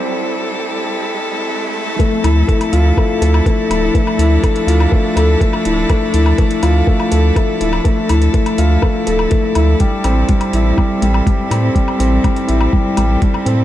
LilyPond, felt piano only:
\new Staff \with { instrumentName = "Felt piano" } { \time 4/4 \key d \dorian \tempo 4 = 123 r1 | a8 e'8 a8 f'8 a8 a'8 a8 e'8 | a8 e'8 a8 f'8 a8 a'8 a8 e'8 | a8 e'8 a8 f'8 a8 a'8 a8 e'8 |
a8 e'8 a8 f'8 a8 a'8 a8 e'8 | g8 c'8 g8 e'8 g8 g8 g8 c'8 | g8 c'8 g8 e'8 g8 g8 g8 c'8 | }